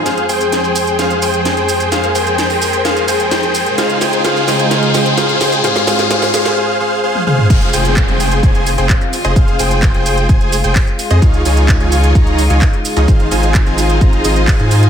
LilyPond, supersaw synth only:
\new Staff \with { instrumentName = "Supersaw synth" } { \time 4/4 \key f \minor \tempo 4 = 129 <aes' c'' f''>8 <aes' c'' g''>8. <aes' c'' g''>8. <aes' c'' f''>8 <aes' c'' g''>8. <aes' c'' g''>8. | <aes' c'' f''>8 <aes' c'' g''>8. <aes' c'' g''>8. <aes' c'' f''>8 <aes' c'' g''>8. <aes' c'' g''>8. | <aes' c'' f''>8 <aes' c'' g''>8 <aes' c'' f''>8 <aes' c'' g''>8 <aes' c'' f''>8 <aes' c'' g''>8 <aes' c'' f''>8 <aes' c'' g''>8 | <aes' c'' f''>8 <aes' c'' f''>8 <aes' c'' f''>8 <aes' c'' f''>8 <aes' c'' f''>8 <aes' c'' f''>8 <aes' c'' f''>8 <aes' c'' f''>8 |
<aes' c''>8 <aes' c'' g''>8. <aes' c'' g''>8. <aes' c'' aes''>8 r16 <aes' c'' g''>16 r8. <aes' c'' ees''>16 | <aes' c'' f''>8 <aes' c'' g''>8. <aes' c'' g''>8. <aes' c'' aes''>8 r16 <aes' c'' g''>16 r8. <aes' c'' ees''>16 | <ees' f' aes' des'' f''>8 <ees' f' aes' des'' aes''>8. <ees' f' aes' des'' aes''>8. <ees' f' aes' des'' bes''>8 r16 <ees' f' aes' des'' aes''>16 r8. <ees' f' aes' des'' ees''>16 | <ees' f' aes' c'' f''>8 <ees' f' aes' c'' aes''>8. <ees' f' aes' c'' aes''>8. <ees' f' c'' bes''>8 <ees' f' aes' c'' ees''>8. <ees' f' aes' c'' aes''>8. | }